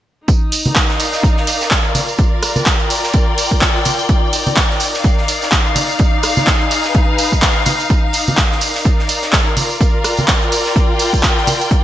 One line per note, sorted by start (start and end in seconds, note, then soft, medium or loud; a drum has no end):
0.28 1.95 D#4 medium
0.28 kick loud
0.28 closed hi-hat medium
0.28 tambourine soft
0.52 closed hi-hat medium
0.52 open hi-hat loud
0.52 tambourine medium
0.65 tambourine soft
0.65 high conga medium
0.69 6.00 A#4 medium
0.69 6.77 D5 medium
0.74 2.82 F5 medium
0.74 kick loud
0.74 snare loud
0.74 clap loud
0.74 closed hi-hat medium
0.74 tambourine soft
0.89 snare medium
1.00 closed hi-hat medium
1.00 open hi-hat medium
1.00 tambourine medium
1.13 snare soft
1.13 tambourine soft
1.23 kick loud
1.23 closed hi-hat medium
1.23 tambourine soft
1.37 snare soft
1.47 closed hi-hat medium
1.47 open hi-hat loud
1.47 tambourine medium
1.61 snare medium
1.61 tambourine soft
1.71 kick loud
1.71 snare loud
1.71 clap loud
1.71 closed hi-hat medium
1.71 tambourine soft
1.95 4.86 F4 medium
1.95 closed hi-hat medium
1.95 open hi-hat medium
1.95 tambourine medium
1.95 high conga medium
2.08 tambourine soft
2.18 kick loud
2.18 closed hi-hat medium
2.18 tambourine soft
2.43 cross-stick medium
2.43 closed hi-hat medium
2.43 open hi-hat loud
2.43 tambourine medium
2.55 4.86 G5 medium
2.55 tambourine medium
2.55 high conga medium
2.66 kick loud
2.66 snare loud
2.66 clap loud
2.66 closed hi-hat medium
2.80 closed hi-hat soft
2.90 closed hi-hat medium
2.90 open hi-hat medium
2.90 tambourine medium
3.03 snare soft
3.03 tambourine soft
3.14 kick loud
3.14 closed hi-hat medium
3.14 tambourine soft
3.38 closed hi-hat medium
3.38 open hi-hat loud
3.38 tambourine medium
3.51 kick medium
3.51 closed hi-hat soft
3.51 tambourine medium
3.61 kick loud
3.61 snare loud
3.61 clap loud
3.61 closed hi-hat medium
3.61 tambourine soft
3.76 snare soft
3.85 closed hi-hat medium
3.85 open hi-hat medium
3.85 tambourine medium
3.85 high conga medium
3.99 closed hi-hat soft
3.99 tambourine soft
4.09 9.57 D#4 medium
4.09 kick loud
4.09 closed hi-hat medium
4.09 tambourine soft
4.33 closed hi-hat medium
4.33 open hi-hat loud
4.33 tambourine medium
4.47 tambourine soft
4.47 high conga medium
4.56 kick loud
4.56 snare loud
4.56 clap loud
4.56 closed hi-hat medium
4.56 tambourine soft
4.70 snare medium
4.80 closed hi-hat medium
4.80 open hi-hat medium
4.80 tambourine medium
4.94 10.44 F5 medium
4.94 snare soft
4.94 tambourine medium
5.04 kick loud
5.04 closed hi-hat medium
5.04 tambourine soft
5.18 snare soft
5.28 closed hi-hat medium
5.28 open hi-hat loud
5.28 tambourine medium
5.42 snare medium
5.42 tambourine soft
5.51 kick loud
5.51 snare loud
5.51 clap loud
5.51 closed hi-hat medium
5.51 tambourine soft
5.76 closed hi-hat medium
5.76 open hi-hat medium
5.76 tambourine loud
5.76 high conga medium
5.89 tambourine soft
5.99 kick loud
5.99 closed hi-hat medium
5.99 tambourine soft
6.19 7.90 G#4 medium
6.19 closed hi-hat medium
6.19 tambourine medium
6.23 cross-stick medium
6.23 open hi-hat loud
6.37 tambourine medium
6.37 high conga medium
6.47 kick loud
6.47 snare loud
6.47 clap loud
6.47 closed hi-hat medium
6.61 closed hi-hat soft
6.71 closed hi-hat medium
6.71 open hi-hat medium
6.71 tambourine medium
6.84 7.90 B4 medium
6.84 snare soft
6.84 tambourine medium
6.95 kick loud
6.95 closed hi-hat medium
6.95 tambourine soft
7.18 closed hi-hat medium
7.18 open hi-hat loud
7.18 tambourine medium
7.32 kick medium
7.32 closed hi-hat soft
7.32 tambourine medium
7.42 kick loud
7.42 snare loud
7.42 clap loud
7.42 closed hi-hat medium
7.42 tambourine soft
7.55 snare soft
7.66 closed hi-hat medium
7.66 open hi-hat medium
7.66 tambourine medium
7.66 high conga medium
7.80 closed hi-hat soft
7.80 tambourine soft
7.89 kick loud
7.89 closed hi-hat medium
7.89 tambourine soft
8.12 11.84 D5 medium
8.12 closed hi-hat medium
8.12 open hi-hat loud
8.12 tambourine medium
8.28 tambourine soft
8.28 high conga medium
8.33 11.84 A#4 medium
8.37 kick loud
8.37 snare loud
8.37 clap loud
8.37 closed hi-hat medium
8.52 snare medium
8.61 closed hi-hat medium
8.61 open hi-hat medium
8.61 tambourine medium
8.75 snare soft
8.75 tambourine medium
8.85 kick loud
8.85 closed hi-hat medium
8.85 tambourine soft
8.99 snare soft
9.09 closed hi-hat medium
9.09 open hi-hat loud
9.09 tambourine medium
9.22 snare medium
9.22 tambourine soft
9.33 kick loud
9.33 snare loud
9.33 clap loud
9.33 closed hi-hat medium
9.33 tambourine soft
9.57 11.84 F4 medium
9.57 closed hi-hat medium
9.57 open hi-hat medium
9.57 tambourine medium
9.57 high conga medium
9.70 tambourine soft
9.81 kick loud
9.81 closed hi-hat medium
9.81 tambourine soft
10.04 cross-stick medium
10.04 closed hi-hat medium
10.04 open hi-hat loud
10.04 tambourine medium
10.10 11.84 G5 medium
10.17 tambourine soft
10.17 high conga medium
10.28 kick loud
10.28 snare loud
10.28 clap loud
10.28 closed hi-hat medium
10.28 tambourine soft
10.42 closed hi-hat soft
10.52 closed hi-hat medium
10.52 open hi-hat medium
10.52 tambourine medium
10.65 snare soft
10.65 tambourine soft
10.76 kick loud
10.76 closed hi-hat medium
10.76 tambourine soft
10.99 closed hi-hat medium
10.99 open hi-hat medium
10.99 tambourine medium
11.13 kick medium
11.13 closed hi-hat soft
11.13 tambourine medium
11.23 kick loud
11.23 snare loud
11.23 clap loud
11.23 closed hi-hat medium
11.23 tambourine soft
11.38 snare soft
11.47 closed hi-hat medium
11.47 open hi-hat medium
11.47 tambourine medium
11.47 high conga medium
11.61 closed hi-hat soft
11.61 tambourine soft
11.71 11.84 D#4 medium
11.71 kick loud
11.71 closed hi-hat medium
11.71 tambourine soft